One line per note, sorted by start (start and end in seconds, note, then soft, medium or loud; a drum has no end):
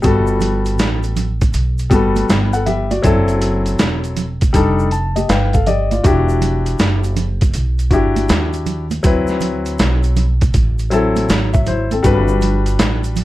0.02 0.79 G1 loud
0.02 1.22 G3 medium
0.02 1.23 B3 medium
0.02 1.23 F#4 medium
0.02 1.24 A4 medium
0.02 kick loud
0.02 closed hi-hat medium
0.02 shaker medium
0.27 shaker soft
0.40 closed hi-hat medium
0.40 low conga medium
0.40 shaker soft
0.66 closed hi-hat soft
0.66 shaker soft
0.79 1.50 A1 medium
0.79 snare loud
0.79 closed hi-hat loud
0.79 shaker medium
1.03 closed hi-hat soft
1.03 shaker soft
1.16 closed hi-hat medium
1.16 low conga medium
1.16 shaker soft
1.41 kick medium
1.41 closed hi-hat medium
1.41 shaker soft
1.54 1.90 B1 medium
1.54 closed hi-hat medium
1.54 shaker medium
1.78 closed hi-hat soft
1.78 shaker soft
1.90 2.27 G1 medium
1.90 2.83 G3 medium
1.90 2.83 B3 medium
1.90 2.29 F#4 medium
1.90 2.30 A4 medium
1.90 kick medium
1.90 closed hi-hat medium
1.90 shaker soft
2.16 closed hi-hat medium
2.16 high conga medium
2.16 shaker soft
2.29 3.00 G1 medium
2.29 snare loud
2.29 closed hi-hat medium
2.29 shaker medium
2.53 2.66 A4 medium
2.53 2.66 F#5 medium
2.53 closed hi-hat soft
2.53 shaker soft
2.66 2.90 G4 medium
2.66 2.90 E5 medium
2.66 closed hi-hat medium
2.66 low conga medium
2.66 shaker soft
2.91 3.27 F#4 medium
2.91 3.27 D5 medium
2.91 closed hi-hat soft
2.91 high conga medium
2.91 shaker soft
3.02 3.76 F#1 loud
3.02 4.23 F#3 medium
3.02 4.23 C4 medium
3.02 4.24 E4 medium
3.02 4.24 A4 loud
3.02 kick loud
3.02 closed hi-hat medium
3.02 shaker medium
3.28 closed hi-hat soft
3.28 shaker soft
3.42 closed hi-hat medium
3.42 shaker soft
3.66 closed hi-hat medium
3.66 shaker soft
3.79 4.51 E1 medium
3.79 snare loud
3.79 closed hi-hat medium
3.79 shaker medium
4.04 closed hi-hat soft
4.04 shaker soft
4.17 closed hi-hat medium
4.17 low conga medium
4.17 shaker soft
4.41 kick medium
4.41 closed hi-hat medium
4.41 shaker soft
4.53 5.26 F1 medium
4.53 4.86 G3 medium
4.53 4.86 D4 medium
4.53 4.87 D#4 medium
4.53 4.87 A4 medium
4.53 kick medium
4.53 closed hi-hat medium
4.53 shaker medium
4.79 shaker soft
4.91 5.27 A5 medium
4.91 closed hi-hat medium
4.91 shaker soft
5.16 5.29 G4 medium
5.16 5.28 D#5 medium
5.16 closed hi-hat medium
5.16 high conga medium
5.16 shaker soft
5.29 6.01 G1 medium
5.29 5.53 B4 medium
5.29 5.52 F5 medium
5.29 5.52 G5 medium
5.29 snare loud
5.29 closed hi-hat medium
5.29 shaker medium
5.53 5.67 A4 medium
5.53 5.66 F5 medium
5.53 kick medium
5.53 closed hi-hat soft
5.53 shaker soft
5.66 5.90 G4 medium
5.66 5.91 D5 medium
5.66 5.90 D#5 medium
5.66 closed hi-hat medium
5.66 low conga medium
5.66 shaker soft
5.91 6.27 F4 medium
5.91 6.27 D5 medium
5.91 closed hi-hat soft
5.91 high conga medium
5.91 shaker soft
6.04 6.76 E1 loud
6.04 7.24 D4 medium
6.04 7.24 E4 medium
6.04 7.23 F#4 medium
6.04 7.25 G4 medium
6.04 kick loud
6.04 closed hi-hat medium
6.04 shaker medium
6.29 shaker soft
6.42 closed hi-hat medium
6.42 low conga medium
6.42 shaker soft
6.66 closed hi-hat medium
6.66 shaker soft
6.79 7.51 F#1 medium
6.79 snare loud
6.79 closed hi-hat medium
6.79 shaker medium
7.04 closed hi-hat soft
7.04 shaker soft
7.17 closed hi-hat medium
7.17 low conga medium
7.17 shaker soft
7.41 kick medium
7.41 closed hi-hat medium
7.41 shaker soft
7.54 7.90 B1 medium
7.54 closed hi-hat medium
7.54 shaker medium
7.79 closed hi-hat soft
7.79 shaker soft
7.91 8.27 G1 medium
7.91 8.84 D4 medium
7.91 8.84 E4 medium
7.91 8.83 F#4 medium
7.91 8.85 G4 medium
7.91 kick medium
7.91 closed hi-hat medium
7.91 shaker soft
8.16 closed hi-hat medium
8.16 high conga medium
8.16 shaker soft
8.29 9.01 D#2 medium
8.29 snare loud
8.29 closed hi-hat medium
8.29 shaker medium
8.53 closed hi-hat soft
8.53 shaker soft
8.66 closed hi-hat medium
8.66 low conga medium
8.66 shaker soft
8.91 closed hi-hat medium
8.91 high conga medium
8.91 shaker soft
9.03 9.76 D2 loud
9.03 10.23 F#3 medium
9.03 10.23 C4 medium
9.03 10.24 E4 medium
9.03 10.24 B4 medium
9.03 kick loud
9.03 closed hi-hat medium
9.03 shaker medium
9.27 snare soft
9.27 shaker soft
9.41 closed hi-hat medium
9.41 low conga medium
9.41 shaker soft
9.66 closed hi-hat medium
9.66 shaker soft
9.79 10.51 B1 loud
9.79 snare loud
9.79 closed hi-hat medium
9.79 shaker medium
10.03 closed hi-hat soft
10.03 shaker soft
10.16 closed hi-hat medium
10.16 low conga medium
10.16 shaker soft
10.41 kick medium
10.41 closed hi-hat medium
10.41 shaker soft
10.54 11.26 A1 medium
10.54 kick medium
10.54 closed hi-hat medium
10.54 shaker medium
10.79 closed hi-hat soft
10.79 shaker soft
10.90 11.83 F#3 medium
10.90 11.29 C4 medium
10.90 11.29 E4 medium
10.90 11.30 A4 medium
10.90 closed hi-hat medium
10.90 shaker soft
11.16 closed hi-hat medium
11.16 high conga medium
11.16 shaker soft
11.29 12.00 G#1 loud
11.29 snare loud
11.29 closed hi-hat medium
11.29 shaker medium
11.53 11.66 E5 medium
11.53 kick medium
11.53 closed hi-hat soft
11.53 shaker soft
11.66 11.90 E4 medium
11.66 11.90 C5 medium
11.66 closed hi-hat medium
11.66 low conga medium
11.66 shaker soft
11.91 12.27 C4 medium
11.91 12.27 A4 medium
11.91 closed hi-hat soft
11.91 high conga medium
11.91 shaker soft
12.03 12.76 G1 loud
12.03 13.23 G3 medium
12.03 13.23 D4 medium
12.03 13.24 F#4 medium
12.03 13.24 B4 medium
12.03 kick loud
12.03 closed hi-hat medium
12.03 shaker medium
12.28 shaker soft
12.41 closed hi-hat medium
12.41 low conga medium
12.41 shaker soft
12.66 closed hi-hat medium
12.66 shaker soft
12.79 13.24 A1 medium
12.79 snare loud
12.79 closed hi-hat medium
12.79 shaker medium
13.04 closed hi-hat soft
13.04 shaker soft
13.16 closed hi-hat medium
13.16 low conga medium
13.16 shaker soft